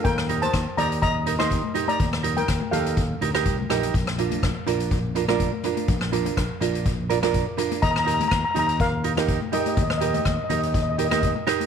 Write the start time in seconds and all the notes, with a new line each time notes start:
0.04 D#2 A#4 G5, kick, closed hi-hat
0.18 cross-stick
0.29 D#4 G4 A#4, closed hi-hat
0.42 C5 A5, closed hi-hat, high conga, low conga
0.54 D#2, kick, cross-stick, closed hi-hat
0.77 D#2 D#4 G4 A#4 D5 A#5, closed hi-hat, low conga
0.92 closed hi-hat
1.02 D#5 A#5, kick, closed hi-hat
1.26 D#4 G4 A#4, closed hi-hat
1.39 D#4 G4 A#4 D#5 C6, cross-stick, closed hi-hat, high conga
1.51 kick, closed hi-hat
1.63 high conga
1.74 D#4 G4 A#4, closed hi-hat, low conga
1.88 D5 A#5, closed hi-hat, high conga
2.00 D#2, kick, closed hi-hat
2.13 cross-stick
2.23 D#4 G4 A#4, closed hi-hat
2.37 A#4 G5, closed hi-hat, high conga, low conga
2.48 D#2, kick, cross-stick, closed hi-hat
2.61 high conga
2.71 D#2 D#4 G4 A4 A#4 F5, closed hi-hat, low conga
2.86 closed hi-hat
2.97 kick, closed hi-hat
3.21 D2 D#4 G4 A#4, closed hi-hat
3.34 D#4 G4 A#4, cross-stick, closed hi-hat, high conga
3.45 C2, kick, closed hi-hat, high conga
3.58 high conga
3.70 A#1 D#4 G4 A#4, cross-stick, closed hi-hat, low conga
3.83 closed hi-hat, low conga
3.94 A#1, kick, closed hi-hat
4.07 cross-stick
4.18 D4 F4 A#4, closed hi-hat
4.31 closed hi-hat, high conga, low conga
4.43 A#1, kick, cross-stick, closed hi-hat
4.67 A#1 D4 F4 A#4, closed hi-hat, low conga
4.80 closed hi-hat
4.91 kick, closed hi-hat
5.15 D4 F4 A#4, closed hi-hat
5.28 D4 F4 A#4, cross-stick, closed hi-hat, high conga
5.40 kick, closed hi-hat
5.52 high conga
5.63 D4 F4 A#4, closed hi-hat, low conga
5.77 closed hi-hat, high conga
5.88 A#1, kick, closed hi-hat
6.01 cross-stick
6.12 D4 F4 A#4, closed hi-hat
6.25 closed hi-hat, high conga, low conga
6.37 A#1, kick, cross-stick, closed hi-hat
6.61 A#1 D4 F4 A#4, closed hi-hat, low conga
6.75 closed hi-hat
6.86 kick, closed hi-hat
7.10 D4 F4 A#4, closed hi-hat
7.23 D4 F4 A#4, cross-stick, closed hi-hat, high conga
7.34 kick, closed hi-hat
7.57 D4 F4 A#4, closed hi-hat, low conga
7.71 closed hi-hat, high conga
7.82 D#2 D#5 A#5, kick, closed hi-hat
7.91 A#5
7.96 A#5, cross-stick
8.05 D#4 G4 A#4 A#5, closed hi-hat
8.14 A#5
8.20 A#5, closed hi-hat, high conga, low conga
8.28 D#2 A#5, kick, cross-stick, closed hi-hat
8.35 A#5
8.45 A#5
8.51 D#4 G4 A#4 A#5
8.56 D#2 A#5, closed hi-hat, low conga
8.67 A#5, closed hi-hat
8.80 A#4 F5, kick, closed hi-hat
9.04 D#4 G4 A#4, closed hi-hat
9.17 D#4 G4 A#4, cross-stick, closed hi-hat, high conga
9.28 kick, closed hi-hat
9.42 high conga
9.52 D#4 G4 A#4 D#5, closed hi-hat, low conga
9.61 D#5
9.66 D#5, closed hi-hat, high conga
9.75 D#2 D#5, kick, closed hi-hat
9.82 D#5
9.90 D#5, cross-stick
9.98 D#4 G4 D#5, closed hi-hat
10.02 A#4
10.06 D#5
10.14 D#5, closed hi-hat, high conga, low conga
10.21 D#5
10.25 D#2 D#5, kick, cross-stick, closed hi-hat
10.36 D#5
10.44 D#5
10.49 D#2 D#4 G4 A#4 D#5, closed hi-hat, low conga
10.59 D#5
10.63 D#5, closed hi-hat
10.74 D#5, kick, closed hi-hat
10.82 D#5
10.89 D#5
10.97 D#4 G4 A#4 D#5, closed hi-hat
11.05 D#5
11.10 D#4 G4 A#4 D#5, cross-stick, closed hi-hat, high conga
11.20 D#5, kick, closed hi-hat
11.27 D#5
11.36 high conga
11.47 D#4 G4 A#4, cross-stick, closed hi-hat, low conga
11.60 closed hi-hat, high conga